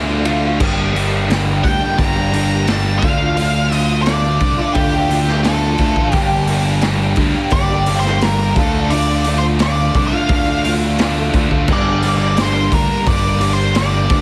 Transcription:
Already playing: D2 D3 F3 A3 D4 F4
0.24 D3 F3 A3 D4 F4, ride
0.57 G1 G2 D3 G3 A#3 D4 G4, kick, crash
0.61 D4
0.93 G2 D3 G3 A#3 D4 G4, open hi-hat
1.27 G2 D3 G3 A#3 D4 G4, open hi-hat
1.32 snare
1.45 G3 A#3 D4 G4
1.61 D2 G2 D3 G3 A#3 D4 G5, muted clean electric guitar stroke, kick, open hi-hat
1.79 G3 A#3 D4 G4
1.96 G1 G2 D3 G3 A#3 D4 G4 A#5, kick, open hi-hat
2.15 G3 A#3 D4 G4
2.31 G2 D3 G3 A#3 D4 G4, open hi-hat
2.65 G2 D3 G3 A#3 D4 G4, snare, open hi-hat
2.70 A5
2.84 G3 A#3 D4 G4
2.99 D2 D3 F3 A3 D4 F5, kick
3.03 F4, open hi-hat
3.19 A3 D4 F4
3.35 D3 F3 A3 D4 F4, open hi-hat
3.69 D3 F3 A3 D4, open hi-hat
3.74 F4 D#5
4.02 D3 F3 A3 D4 D5, open hi-hat
4.07 A3 D4 F4, snare
4.23 A3 D4 F4
4.40 C2 D3 F3 A3 D4, muted clean electric guitar stroke, kick, open hi-hat
4.57 A3 D4 F4
4.73 D2 D3 F3 A3 D4 G4, kick, open hi-hat
4.77 F4
4.91 A3 D4 F4
5.09 D3 F3 A3 D4 F4, open hi-hat
5.28 snare
5.43 D3 F3 A3 D4 F4 A4, snare, open hi-hat
5.60 A3 D4 F4
5.78 D2 D3 F3 A3 D4, kick, snare, open hi-hat
5.95 A1 A3 D4 F4, kick
6.12 G1 G2 D3 G3 A#3 D4 G4, kick, open hi-hat
6.47 G2 D3 G3 A#3 D4 G4, open hi-hat
6.81 G2 D3 G3 A#3 D4 G4, snare, open hi-hat
6.99 G3 A#3 D4 G4
7.16 D2 G2 D3 G3 A#3 D4, muted clean electric guitar stroke, kick, open hi-hat
7.35 G3 A#3 D4 G4
7.50 G1 G2 D3 G3 A#3 D4 D5, kick, open hi-hat
7.55 G4
7.70 G3 A#3 D4 G4
7.86 G2 D3 G3 A#3 D4 G4, open hi-hat
7.99 C5
8.05 snare
8.21 G2 D3 G3 A#3 D4 G4 A#4, snare, open hi-hat
8.38 G3 A#3 D4 G4
8.55 D2 D3 F3 A3 D4 F4 A4, kick, open hi-hat
8.72 A3 D4 F4
8.89 D3 F3 A3 D4 F4 D5, open hi-hat
9.24 D3 F3 A3 D4 F4, open hi-hat
9.38 C5
9.58 D3 F3 A3 D4 F4 D5, snare, open hi-hat
9.76 A3 D4 F4
9.93 C2 D3 F3 A3 D4, muted clean electric guitar stroke, kick, open hi-hat
10.07 F5
10.11 A3 D4 F4
10.29 D2 D3 F3 A3 D4 F4, kick, open hi-hat
10.46 A3 D4 F4
10.63 D3 F3 A3 D4 F4, open hi-hat
10.97 D3 F3 A3 D4 F4, snare, open hi-hat
11.15 A3 D4 F4
11.33 D2 D3 F3 A3 D4, kick, open hi-hat
11.49 D2 A3 D4 F4, kick
11.66 G1 G2 D3 G3 A#3 D4 A#4 D5, kick, crash
11.70 G3 A#3 D4 D5
12.03 G2 D3 G3 A#3 D4, open hi-hat
12.18 D5
12.37 G2 D3 G3 A#3 D4, snare, open hi-hat
12.41 C5
12.71 D2 G2 D3 G3 A#3 D4 A#4, kick, open hi-hat
13.06 G1 G2 D3 G3 A#3 D4 D5, kick, open hi-hat
13.40 G2 D3 G3 A#3 D4, open hi-hat
13.53 C5
13.74 G2 D3 G3 A#3 D4 D5, snare, open hi-hat
14.10 D2 D3 F3 A3 D4 A4, kick, snare, open hi-hat

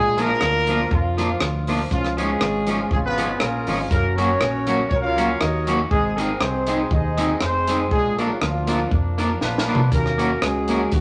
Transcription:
Already playing: A#1 G#3 D4 F4 G#4
0.17 F3 A#3 D4 F4 A#4, closed hi-hat
0.41 D2, muted clean electric guitar stroke, cross-stick
0.67 F3 A#3 D4 F4, closed hi-hat
0.91 F2 F3 A#3 D4 F4, kick
1.17 F3 A#3 D4 F4, closed hi-hat
1.40 D2, cross-stick
1.67 F3 A#3 D4 F4, open hi-hat
1.91 C#2 F3 G#3 C#4 F4, kick, hi-hat pedal
2.05 cross-stick
2.17 F3 G#3 C#4 F4 G#4, closed hi-hat
2.41 G#1, muted clean electric guitar stroke, cross-stick
2.67 F3 G#3 C#4 F4, closed hi-hat
2.91 G#1 G#3 C#4 F4 G#4, kick
3.04 B3 F4 G#4 B4
3.17 F3 G#3 C#4 F4, closed hi-hat
3.40 A#1 A#3 C#4 F4 A#4, cross-stick
3.67 G#1 F3 G#3 C#4 F4, open hi-hat
3.91 F#1 A#3 C#4 F#4 A#4, kick, hi-hat pedal
4.16 F#3 A#3 C#4 F#4 A#4 C#5, closed hi-hat
4.41 A#1, muted clean electric guitar stroke, cross-stick
4.67 F#3 A#3 C#4 F#4, closed hi-hat
4.90 C#2 C#4 F#4 A#4 C#5, kick
5.02 F4 A#4 C#5 F5
5.17 F#3 A#3 C#4 F#4, closed hi-hat
5.40 D#2 D#4 F#4 A#4 D#5, cross-stick
5.67 F#3 A#3 C#4 F#4, closed hi-hat
5.90 G#1 G#3 C4 D#4 G#4, kick
6.17 G#3 A#3 C4 D#4 G#4 A#4, closed hi-hat
6.40 C2 C4 D#4 G#4 C5, muted clean electric guitar stroke, cross-stick
6.67 G#3 C4 D#4 G#4, closed hi-hat
6.91 D#2 D#4 G#4 C5 D#5, kick
7.17 G#3 C4 D#4 G#4, closed hi-hat
7.40 F1 C4 D#4 G#4 C5, cross-stick
7.67 G#3 C4 D#4 G#4, closed hi-hat
7.91 A#1 G#3 D4 F4 G#4, kick
8.17 A#3 D4 F4 A#4, closed hi-hat
8.28 F#3 F#4
8.40 D2 F3 A#3 D4 F4, muted clean electric guitar stroke, cross-stick
8.67 A#3 D4 F4 A#4, closed hi-hat
8.91 F2 F3 A#3 D4 A#4, kick
9.18 A#3 D4 F4 A#4, closed hi-hat
9.41 A#1 B3 D4 F4 B4, snare
9.58 snare
9.68 A#3 D4 F4 A#4
9.75 floor tom
9.92 D#2 A#3 C#4 F#4 A#4, kick, closed hi-hat
10.06 cross-stick
10.18 A#3 C#4 F#4 A#4, closed hi-hat
10.42 C#2 G#3 C#4 G#4, muted clean electric guitar stroke, cross-stick, closed hi-hat
10.68 A#3 C#4 F#4 A#4, closed hi-hat
10.92 D#2 F#3 A#3 C#4 F#4, kick, closed hi-hat

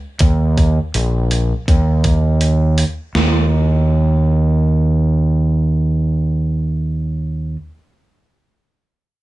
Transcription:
0.19 D#2, kick, open hi-hat
0.58 kick, open hi-hat
0.94 A#1, open hi-hat
1.31 open hi-hat
1.68 D#2, kick, open hi-hat
2.04 kick, open hi-hat
2.41 open hi-hat
2.78 open hi-hat
3.15 D#2, snare

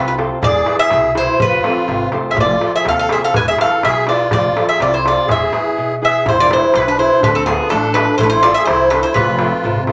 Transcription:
Already playing: C2 C3 F4
0.08 B4
0.17 F4 A4 C5, darbuka tek
0.42 E1 E3 G#4 D5, darbuka dum
0.55 darbuka tek
0.66 E4 G#4 B4, darbuka tek
0.78 G#4 E5
0.90 C2 B2, darbuka tek
1.14 E4 G#4 B4 C5, darbuka tek
1.39 F1 F3 F4 B4, darbuka dum
1.64 C4 F4 A4, darbuka tek
1.76 darbuka tek
1.88 G#1 C3, darbuka tek
2.12 F1 F4 A4 C5, darbuka tek
2.29 G#4 E5
2.36 F1 F3 F4, darbuka dum
2.40 D5
2.50 darbuka tek
2.60 F4 A4 C5, darbuka tek
2.74 G#4 E5
2.85 D#2 C3 A4 F5, darbuka tek
2.98 A4 F5
3.09 F4 G#4 A4 C5 E5, darbuka tek
3.24 A4 F5
3.33 E1 E3 B4 G#5, darbuka dum
3.47 G#4 E5, darbuka tek
3.58 E4 G#4 A4 B4 F5, darbuka tek
3.83 B1 B2 G#4 E5, darbuka tek
4.07 E4 F4 G#4 B4 D5, darbuka tek
4.31 F1 F3 F4 D5, darbuka dum
4.45 darbuka tek
4.56 F4 A4 C5, darbuka tek
4.68 G#4 E5
4.80 C2 C3 F4 D5, darbuka tek
4.91 E4 C5
5.03 F4 A4 C5, darbuka tek
5.08 D5
5.26 E1 E3 G#4, darbuka dum
5.31 E5
5.42 darbuka tek
5.52 E4 G#4 B4, darbuka tek
5.66 darbuka tek
5.77 B2
6.02 E4 G#4 B4 E5
6.26 E1 E3 E4 C5, darbuka dum
6.38 F4 D5
6.49 E4 G#4 B4 C5, darbuka tek
6.74 B1 B2 E4 B4, darbuka tek
6.86 D4 B4
6.98 E4 G#4 B4 C5
7.20 D2 D3 D4 B4, darbuka dum
7.33 C4 A4
7.46 B3 D4 F4 G#4 A4, darbuka tek
7.70 A1 A3 D4 A4, darbuka tek
7.94 D4 F4 A4 B4, darbuka tek
8.18 A1 A3 E4 C5, darbuka dum
8.23 D4 B4
8.30 E4 C5
8.43 E4 F4 A4 C5 D5, darbuka tek
8.54 G#4 E5
8.65 C2 E3 E4 C5, darbuka tek
8.90 D4 E4 A4 B4 C5, darbuka tek
9.03 E4 C5
9.14 F1 F3 F4 B4, darbuka dum
9.27 darbuka tek
9.39 C4 F4 A4, darbuka tek
9.51 darbuka tek
9.63 G#1 C3, darbuka dum
9.75 darbuka dum
9.87 F4 A4 C5, darbuka tek

